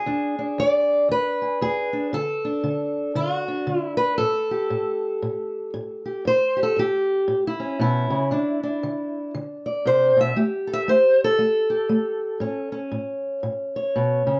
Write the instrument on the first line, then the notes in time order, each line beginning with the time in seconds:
steel-string acoustic guitar
Already playing: F#4 G#4
0.06 E2 D4
0.39 D4
0.58 E2 D5
1.09 E2 B4
1.42 G#4
1.61 E2 G#4
1.93 D4
2.13 D3 A4
2.45 D4
2.64 D3
3.15 D3 F#4
3.48 D4
3.67 D3
3.82 E4
3.97 B4
4.18 A2 A4
4.51 G4
4.70 A2
5.22 A2
5.74 A2
6.06 G4
6.25 A2 C5
6.57 G4
6.63 A4
6.76 A2 G4
7.28 A2
7.47 E4
7.60 C#4
7.80 B2 E4
8.10 C#3
8.31 D3 D4
8.63 D4
8.83 D3
9.35 D3
9.66 D5
9.86 C3 C5
10.17 B2 E5
10.36 A3 G4
10.67 A4
10.73 E5
10.88 A3 C5
11.24 A4
11.39 A3
11.70 G4
11.89 A3
12.40 A2 C#4
12.72 C#4
12.92 A2
13.43 A2
13.76 C#5
13.96 B2
14.27 C#3